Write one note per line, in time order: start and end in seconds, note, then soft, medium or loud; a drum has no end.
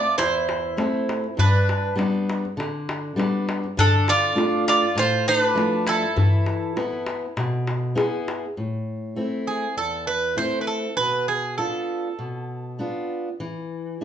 0.00 0.15 F4 medium
0.00 0.17 D5 medium
0.05 darbuka tek soft
0.18 0.76 E2 medium
0.18 1.34 E4 medium
0.18 1.39 C5 medium
0.18 darbuka tek medium
0.49 darbuka tek medium
0.77 1.25 A3 medium
0.77 1.26 C4 medium
0.77 1.26 E4 medium
0.77 darbuka tek medium
1.09 darbuka tek medium
1.24 darbuka tek soft
1.37 1.95 G2 medium
1.37 1.95 D4 medium
1.37 1.94 B4 medium
1.37 darbuka dum medium
1.69 darbuka tek medium
1.96 2.44 G3 soft
1.96 2.45 B3 soft
1.96 2.45 D4 medium
1.96 darbuka tek medium
2.15 darbuka tek soft
2.30 darbuka tek medium
2.45 darbuka tek soft
2.57 3.15 D3 medium
2.57 darbuka tek medium
2.89 darbuka tek medium
3.16 3.64 G3 medium
3.16 3.65 B3 soft
3.16 3.65 D4 medium
3.16 darbuka tek medium
3.49 darbuka tek medium
3.64 darbuka tek soft
3.77 4.35 D3 medium
3.77 4.06 D4 medium
3.77 4.09 A4 loud
3.77 darbuka dum medium
4.08 4.64 F4 medium
4.08 4.64 D5 loud
4.08 darbuka tek medium
4.35 4.84 A3 medium
4.35 4.84 D4 medium
4.35 4.84 F4 medium
4.35 darbuka tek medium
4.52 darbuka tek soft
4.68 4.95 F4 medium
4.68 4.96 D5 medium
4.68 darbuka tek medium
4.83 darbuka tek soft
4.95 5.54 A2 medium
4.95 5.25 F4 medium
4.95 5.26 C5 medium
4.95 darbuka tek medium
5.28 5.83 D4 medium
5.28 5.40 C5 loud
5.40 5.88 B4 loud
5.55 6.04 F3 medium
5.55 6.04 A3 medium
5.55 6.04 D4 soft
5.55 darbuka tek medium
5.87 7.93 E4 medium
5.87 7.94 A4 medium
5.87 darbuka tek medium
6.02 darbuka tek soft
6.16 6.75 E3 medium
6.16 darbuka dum medium
6.33 darbuka tek soft
6.46 darbuka tek medium
6.76 7.25 B3 soft
6.76 7.25 E4 soft
6.76 7.25 B4 medium
6.76 darbuka tek medium
6.93 darbuka tek soft
7.07 darbuka tek medium
7.37 7.95 B2 medium
7.37 darbuka tek medium
7.67 darbuka tek medium
7.95 8.44 B3 medium
7.95 8.45 E4 soft
7.95 8.45 G#4 medium
7.95 darbuka tek medium
8.28 darbuka tek medium
8.57 9.16 A2 medium
9.16 9.65 A3 soft
9.16 9.66 C4 soft
9.16 9.66 E4 soft
9.47 9.76 G#4 medium
9.77 10.36 E2 soft
9.77 10.06 A4 medium
10.07 10.36 B4 medium
10.36 10.85 A3 soft
10.36 10.86 C4 soft
10.36 10.86 E4 soft
10.36 10.60 C5 medium
10.61 10.67 B4 medium
10.67 10.96 A4 medium
10.97 11.57 B2 medium
10.97 11.28 B4 medium
11.28 11.57 G#4 medium
11.58 12.07 B3 soft
11.58 12.08 D4 soft
11.58 12.07 F4 medium
11.58 13.06 A4 medium
12.19 12.78 B2 medium
12.79 13.28 B3 medium
12.79 13.28 D4 soft
12.79 13.29 F4 soft
13.40 13.99 E3 medium
14.01 14.04 D4 soft